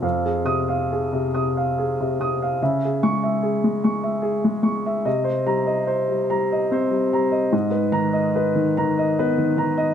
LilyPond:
<<
  \new Staff \with { instrumentName = "Upright piano" } { \time 3/4 \key c \minor \tempo 4 = 73 << { r8 ees'''8 r2 | r8 des'''8 r2 | r8 bes''8 r2 | r8 bes''8 r2 | } \\ { f''16 aes'8 f''16 aes'16 c16 ees'''16 f''16 aes'16 c16 ees'''16 f''16 | fes''16 aes'8 fes''16 aes'16 aes16 des'''16 fes''16 aes'16 aes16 des'''16 fes''16 | ees''16 c''8 ees''16 c''16 g16 bes''16 ees''16 c''16 g16 bes''16 ees''16 | ees''16 ces''8 ees''16 ces''16 ees16 bes''16 ees''16 ces''16 ees16 bes''16 ees''16 | } >> }
  \new Staff \with { instrumentName = "Upright piano" } { \clef bass \time 3/4 \key c \minor f,8 c4 c4 c8 | des8 aes4 aes4 aes8 | c8 g4 g8 c'8 g8 | aes,8 ees4 ees8 ces'8 ees8 | }
>>